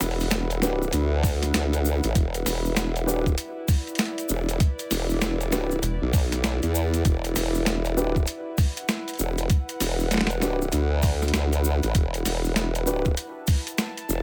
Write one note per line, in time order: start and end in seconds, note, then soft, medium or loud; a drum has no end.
0.00 0.91 E1 loud
0.00 14.23 E4 medium
0.00 14.23 B4 medium
0.00 3.31 F#5 medium
0.00 snare medium
0.00 open hi-hat soft
0.00 cabasa medium
0.11 open hi-hat soft
0.20 open hi-hat soft
0.20 cabasa soft
0.31 snare loud
0.31 closed hi-hat medium
0.31 cabasa medium
0.50 closed hi-hat soft
0.50 cabasa soft
0.62 0.80 D4 medium
0.62 0.80 F#4 medium
0.62 0.80 G4 medium
0.62 0.80 B4 medium
0.62 snare medium
0.62 cabasa loud
0.82 cabasa soft
0.93 1.52 D2 loud
0.93 closed hi-hat medium
0.93 cabasa medium
1.23 kick loud
1.23 open hi-hat medium
1.23 cabasa loud
1.43 snare soft
1.43 closed hi-hat medium
1.43 cabasa soft
1.54 2.01 D2 loud
1.54 snare loud
1.54 closed hi-hat medium
1.54 cabasa medium
1.73 closed hi-hat soft
1.73 cabasa soft
1.85 cabasa loud
2.03 2.13 A1 loud
2.03 closed hi-hat medium
2.03 cabasa soft
2.15 2.44 E1 loud
2.15 kick loud
2.15 closed hi-hat medium
2.15 cabasa medium
2.34 closed hi-hat soft
2.34 cabasa soft
2.46 3.10 E1 loud
2.46 snare medium
2.46 open hi-hat medium
2.46 cabasa loud
2.65 cabasa soft
2.76 snare loud
2.76 closed hi-hat medium
2.76 cabasa medium
2.96 closed hi-hat soft
2.96 cabasa soft
3.07 3.36 D#1 loud
3.07 3.25 D4 medium
3.07 3.25 F#4 medium
3.07 3.25 G4 medium
3.07 3.25 B4 medium
3.07 cabasa loud
3.26 8.21 D5 medium
3.26 kick medium
3.26 cabasa soft
3.38 closed hi-hat medium
3.38 cabasa medium
3.68 kick loud
3.68 open hi-hat medium
3.68 cabasa loud
3.87 closed hi-hat soft
3.87 cabasa soft
3.95 snare loud
3.95 closed hi-hat soft
3.95 cabasa medium
3.99 closed hi-hat medium
4.05 closed hi-hat soft
4.18 closed hi-hat soft
4.18 cabasa soft
4.29 4.58 E1 loud
4.29 cabasa loud
4.49 closed hi-hat medium
4.49 cabasa soft
4.60 kick loud
4.60 closed hi-hat medium
4.60 cabasa medium
4.79 closed hi-hat soft
4.79 cabasa soft
4.91 5.81 E1 loud
4.91 snare medium
4.91 open hi-hat medium
4.91 cabasa loud
5.10 cabasa soft
5.21 snare loud
5.21 snare soft
5.21 closed hi-hat medium
5.21 cabasa medium
5.41 closed hi-hat soft
5.41 cabasa soft
5.52 5.70 D4 medium
5.52 5.70 F#4 medium
5.52 5.70 G4 medium
5.52 5.70 B4 loud
5.52 snare medium
5.52 cabasa loud
5.71 cabasa soft
5.83 5.99 E1 loud
5.83 closed hi-hat medium
5.83 cabasa medium
6.02 6.60 B1 loud
6.13 kick loud
6.13 open hi-hat medium
6.13 cabasa medium
6.32 snare soft
6.32 closed hi-hat medium
6.32 cabasa soft
6.44 snare loud
6.44 closed hi-hat medium
6.44 cabasa medium
6.62 7.03 E2 loud
6.62 closed hi-hat soft
6.62 cabasa soft
6.75 cabasa loud
6.94 closed hi-hat medium
6.94 cabasa soft
7.05 7.34 E1 loud
7.05 kick loud
7.05 closed hi-hat medium
7.05 cabasa medium
7.24 closed hi-hat soft
7.24 cabasa soft
7.36 8.00 E1 medium
7.36 snare medium
7.36 open hi-hat medium
7.36 cabasa medium
7.55 cabasa soft
7.66 snare loud
7.66 closed hi-hat medium
7.66 cabasa medium
7.85 closed hi-hat soft
7.85 cabasa soft
7.97 8.26 D#1 medium
7.97 8.15 D4 medium
7.97 8.15 F#4 medium
7.97 8.15 G4 medium
7.97 8.15 B4 medium
7.97 cabasa medium
8.16 13.10 F#5 medium
8.16 kick medium
8.16 cabasa soft
8.27 closed hi-hat medium
8.27 cabasa medium
8.58 kick loud
8.58 open hi-hat medium
8.58 cabasa medium
8.77 closed hi-hat medium
8.77 cabasa soft
8.88 snare loud
8.88 closed hi-hat medium
8.88 cabasa medium
9.08 closed hi-hat soft
9.08 cabasa soft
9.10 closed hi-hat soft
9.13 closed hi-hat soft
9.15 closed hi-hat soft
9.17 9.48 E1 loud
9.17 closed hi-hat soft
9.17 cabasa medium
9.38 closed hi-hat medium
9.38 cabasa soft
9.50 kick loud
9.50 closed hi-hat medium
9.50 cabasa medium
9.69 closed hi-hat soft
9.69 cabasa soft
9.80 10.71 E1 medium
9.80 snare medium
9.80 open hi-hat medium
9.80 cabasa medium
9.99 cabasa soft
10.11 snare medium
10.11 closed hi-hat medium
10.11 cabasa soft
10.14 snare medium
10.17 snare medium
10.21 snare medium
10.27 snare loud
10.27 closed hi-hat soft
10.27 cabasa soft
10.41 10.60 D4 medium
10.41 10.60 F#4 medium
10.41 10.60 G4 medium
10.41 10.60 B4 medium
10.41 snare medium
10.41 cabasa medium
10.62 cabasa soft
10.72 11.32 D2 loud
10.72 closed hi-hat medium
10.72 cabasa soft
11.02 kick loud
11.02 open hi-hat medium
11.02 cabasa medium
11.22 snare soft
11.22 cabasa soft
11.28 closed hi-hat medium
11.34 11.80 D2 loud
11.34 snare loud
11.34 closed hi-hat medium
11.34 cabasa medium
11.53 closed hi-hat soft
11.53 cabasa soft
11.64 cabasa loud
11.83 11.93 A1 loud
11.83 closed hi-hat medium
11.83 cabasa soft
11.95 12.24 E1 loud
11.95 kick loud
11.95 closed hi-hat medium
11.95 cabasa soft
12.14 closed hi-hat soft
12.14 cabasa soft
12.25 13.15 E1 loud
12.25 snare medium
12.25 open hi-hat medium
12.25 cabasa medium
12.45 cabasa soft
12.56 snare loud
12.56 closed hi-hat medium
12.56 cabasa soft
12.75 closed hi-hat soft
12.75 cabasa soft
12.87 13.05 D4 medium
12.87 13.05 F#4 medium
12.87 13.05 G4 medium
12.87 13.05 B4 loud
12.87 cabasa medium
13.05 14.23 A5 medium
13.05 kick medium
13.05 cabasa soft
13.17 closed hi-hat medium
13.17 cabasa medium
13.47 kick loud
13.47 open hi-hat medium
13.47 cabasa medium
13.67 closed hi-hat medium
13.67 cabasa soft
13.78 snare loud
13.78 closed hi-hat medium
13.78 cabasa medium
13.97 closed hi-hat soft
13.97 cabasa soft
14.09 14.23 E1 loud
14.09 cabasa loud